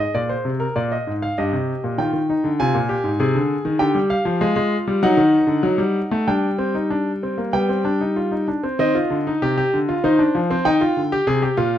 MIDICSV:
0, 0, Header, 1, 2, 480
1, 0, Start_track
1, 0, Tempo, 610998
1, 1084, Time_signature, 4, 2, 24, 8
1, 4431, Tempo, 632244
1, 7311, Tempo, 609756
1, 9158, End_track
2, 0, Start_track
2, 0, Title_t, "Grand piano"
2, 0, Program_c, 0, 0
2, 0, Note_on_c, 0, 68, 65
2, 0, Note_on_c, 0, 75, 73
2, 108, Note_off_c, 0, 75, 0
2, 114, Note_on_c, 0, 46, 69
2, 114, Note_on_c, 0, 74, 81
2, 231, Note_off_c, 0, 74, 0
2, 231, Note_on_c, 0, 72, 65
2, 264, Note_off_c, 0, 46, 0
2, 351, Note_on_c, 0, 48, 67
2, 382, Note_off_c, 0, 72, 0
2, 470, Note_on_c, 0, 70, 77
2, 503, Note_off_c, 0, 48, 0
2, 591, Note_off_c, 0, 70, 0
2, 595, Note_on_c, 0, 74, 72
2, 596, Note_on_c, 0, 46, 72
2, 715, Note_off_c, 0, 74, 0
2, 720, Note_on_c, 0, 75, 62
2, 747, Note_off_c, 0, 46, 0
2, 841, Note_on_c, 0, 44, 57
2, 871, Note_off_c, 0, 75, 0
2, 962, Note_on_c, 0, 77, 73
2, 992, Note_off_c, 0, 44, 0
2, 1050, Note_off_c, 0, 68, 0
2, 1080, Note_off_c, 0, 77, 0
2, 1084, Note_on_c, 0, 75, 67
2, 1086, Note_on_c, 0, 43, 78
2, 1087, Note_on_c, 0, 67, 68
2, 1198, Note_on_c, 0, 48, 66
2, 1202, Note_off_c, 0, 43, 0
2, 1349, Note_off_c, 0, 48, 0
2, 1445, Note_on_c, 0, 46, 65
2, 1550, Note_off_c, 0, 75, 0
2, 1551, Note_off_c, 0, 67, 0
2, 1554, Note_on_c, 0, 51, 75
2, 1559, Note_on_c, 0, 65, 63
2, 1559, Note_on_c, 0, 79, 66
2, 1561, Note_off_c, 0, 46, 0
2, 1663, Note_off_c, 0, 51, 0
2, 1675, Note_on_c, 0, 51, 67
2, 1709, Note_off_c, 0, 65, 0
2, 1803, Note_on_c, 0, 63, 66
2, 1826, Note_off_c, 0, 51, 0
2, 1917, Note_on_c, 0, 50, 74
2, 1952, Note_off_c, 0, 63, 0
2, 2026, Note_off_c, 0, 79, 0
2, 2036, Note_off_c, 0, 50, 0
2, 2040, Note_on_c, 0, 80, 87
2, 2041, Note_on_c, 0, 65, 76
2, 2042, Note_on_c, 0, 48, 83
2, 2158, Note_on_c, 0, 46, 77
2, 2159, Note_off_c, 0, 48, 0
2, 2190, Note_off_c, 0, 65, 0
2, 2271, Note_on_c, 0, 67, 76
2, 2308, Note_off_c, 0, 46, 0
2, 2387, Note_on_c, 0, 44, 72
2, 2422, Note_off_c, 0, 67, 0
2, 2510, Note_off_c, 0, 44, 0
2, 2510, Note_on_c, 0, 48, 88
2, 2513, Note_on_c, 0, 68, 81
2, 2631, Note_off_c, 0, 48, 0
2, 2633, Note_on_c, 0, 50, 84
2, 2783, Note_off_c, 0, 50, 0
2, 2867, Note_on_c, 0, 51, 90
2, 2968, Note_off_c, 0, 80, 0
2, 2980, Note_off_c, 0, 68, 0
2, 2980, Note_on_c, 0, 79, 81
2, 2982, Note_on_c, 0, 67, 81
2, 2985, Note_on_c, 0, 50, 88
2, 2988, Note_off_c, 0, 51, 0
2, 3100, Note_on_c, 0, 55, 76
2, 3106, Note_off_c, 0, 50, 0
2, 3132, Note_off_c, 0, 79, 0
2, 3222, Note_on_c, 0, 77, 86
2, 3252, Note_off_c, 0, 55, 0
2, 3341, Note_on_c, 0, 53, 81
2, 3449, Note_off_c, 0, 67, 0
2, 3462, Note_off_c, 0, 53, 0
2, 3462, Note_on_c, 0, 65, 73
2, 3464, Note_on_c, 0, 56, 93
2, 3571, Note_off_c, 0, 56, 0
2, 3583, Note_on_c, 0, 56, 92
2, 3733, Note_off_c, 0, 56, 0
2, 3830, Note_on_c, 0, 55, 85
2, 3920, Note_off_c, 0, 77, 0
2, 3929, Note_off_c, 0, 65, 0
2, 3945, Note_off_c, 0, 55, 0
2, 3948, Note_on_c, 0, 54, 102
2, 3951, Note_on_c, 0, 78, 90
2, 3953, Note_on_c, 0, 63, 94
2, 4062, Note_on_c, 0, 51, 92
2, 4065, Note_off_c, 0, 54, 0
2, 4214, Note_off_c, 0, 51, 0
2, 4297, Note_on_c, 0, 50, 85
2, 4421, Note_off_c, 0, 50, 0
2, 4422, Note_on_c, 0, 54, 93
2, 4537, Note_on_c, 0, 55, 84
2, 4542, Note_off_c, 0, 54, 0
2, 4690, Note_off_c, 0, 55, 0
2, 4791, Note_on_c, 0, 57, 92
2, 4885, Note_off_c, 0, 78, 0
2, 4886, Note_off_c, 0, 63, 0
2, 4908, Note_off_c, 0, 57, 0
2, 4913, Note_on_c, 0, 79, 74
2, 4914, Note_on_c, 0, 55, 72
2, 4914, Note_on_c, 0, 62, 76
2, 5064, Note_off_c, 0, 62, 0
2, 5148, Note_on_c, 0, 60, 74
2, 5269, Note_off_c, 0, 60, 0
2, 5271, Note_on_c, 0, 63, 63
2, 5391, Note_off_c, 0, 63, 0
2, 5391, Note_on_c, 0, 62, 70
2, 5542, Note_off_c, 0, 62, 0
2, 5638, Note_on_c, 0, 60, 59
2, 5750, Note_on_c, 0, 58, 62
2, 5754, Note_off_c, 0, 60, 0
2, 5849, Note_off_c, 0, 55, 0
2, 5849, Note_off_c, 0, 79, 0
2, 5865, Note_on_c, 0, 59, 72
2, 5867, Note_on_c, 0, 79, 80
2, 5868, Note_on_c, 0, 55, 81
2, 5869, Note_off_c, 0, 58, 0
2, 5986, Note_off_c, 0, 59, 0
2, 5988, Note_on_c, 0, 60, 62
2, 6106, Note_on_c, 0, 62, 73
2, 6108, Note_off_c, 0, 60, 0
2, 6228, Note_off_c, 0, 62, 0
2, 6228, Note_on_c, 0, 63, 62
2, 6346, Note_on_c, 0, 65, 67
2, 6349, Note_off_c, 0, 63, 0
2, 6462, Note_on_c, 0, 63, 61
2, 6469, Note_off_c, 0, 65, 0
2, 6573, Note_off_c, 0, 55, 0
2, 6573, Note_off_c, 0, 79, 0
2, 6586, Note_on_c, 0, 62, 58
2, 6588, Note_off_c, 0, 63, 0
2, 6704, Note_on_c, 0, 60, 66
2, 6710, Note_off_c, 0, 62, 0
2, 6812, Note_off_c, 0, 60, 0
2, 6822, Note_on_c, 0, 51, 76
2, 6823, Note_on_c, 0, 60, 95
2, 6828, Note_on_c, 0, 75, 78
2, 6942, Note_on_c, 0, 65, 78
2, 6946, Note_off_c, 0, 60, 0
2, 6974, Note_off_c, 0, 51, 0
2, 7060, Note_on_c, 0, 50, 81
2, 7094, Note_off_c, 0, 65, 0
2, 7187, Note_on_c, 0, 63, 71
2, 7211, Note_off_c, 0, 50, 0
2, 7300, Note_on_c, 0, 48, 71
2, 7302, Note_on_c, 0, 67, 91
2, 7305, Note_off_c, 0, 63, 0
2, 7410, Note_off_c, 0, 67, 0
2, 7422, Note_on_c, 0, 67, 88
2, 7454, Note_off_c, 0, 48, 0
2, 7550, Note_on_c, 0, 50, 79
2, 7575, Note_off_c, 0, 67, 0
2, 7667, Note_on_c, 0, 65, 85
2, 7701, Note_off_c, 0, 50, 0
2, 7760, Note_off_c, 0, 75, 0
2, 7786, Note_on_c, 0, 72, 84
2, 7787, Note_on_c, 0, 51, 83
2, 7788, Note_off_c, 0, 65, 0
2, 7789, Note_on_c, 0, 63, 92
2, 7906, Note_on_c, 0, 62, 76
2, 7908, Note_off_c, 0, 63, 0
2, 7938, Note_off_c, 0, 51, 0
2, 8031, Note_on_c, 0, 53, 82
2, 8057, Note_off_c, 0, 62, 0
2, 8154, Note_on_c, 0, 60, 91
2, 8180, Note_off_c, 0, 53, 0
2, 8255, Note_off_c, 0, 72, 0
2, 8269, Note_on_c, 0, 51, 77
2, 8270, Note_off_c, 0, 60, 0
2, 8270, Note_on_c, 0, 79, 86
2, 8273, Note_on_c, 0, 63, 101
2, 8389, Note_off_c, 0, 63, 0
2, 8394, Note_on_c, 0, 65, 84
2, 8419, Note_off_c, 0, 51, 0
2, 8518, Note_on_c, 0, 50, 65
2, 8543, Note_off_c, 0, 65, 0
2, 8640, Note_on_c, 0, 67, 97
2, 8666, Note_off_c, 0, 50, 0
2, 8754, Note_off_c, 0, 67, 0
2, 8757, Note_on_c, 0, 48, 89
2, 8757, Note_on_c, 0, 68, 93
2, 8872, Note_off_c, 0, 68, 0
2, 8877, Note_on_c, 0, 67, 82
2, 8905, Note_off_c, 0, 48, 0
2, 8992, Note_off_c, 0, 67, 0
2, 8995, Note_on_c, 0, 65, 98
2, 8996, Note_on_c, 0, 46, 76
2, 9143, Note_off_c, 0, 65, 0
2, 9144, Note_off_c, 0, 46, 0
2, 9158, Note_off_c, 0, 79, 0
2, 9158, End_track
0, 0, End_of_file